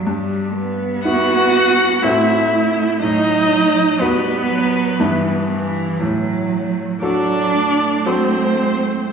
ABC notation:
X:1
M:3/4
L:1/8
Q:1/4=60
K:Em
V:1 name="Violin"
z2 f2 e2 | ^d2 B3 z | z2 d2 c2 |]
V:2 name="Viola"
z2 F2 E2 | ^D2 B,3 z | z2 D2 C2 |]
V:3 name="Grand piano"
G,,2 [B,E]2 [A,,CFA]2 | A,,2 [B,FB]2 [G,,B,EB]2 | A,,2 [F,FA]2 [F,FA]2 |]
V:4 name="Cello" clef=bass
G, B,3 A,2 | F,2 G, F, E, E, | F,2 F, A,3 |]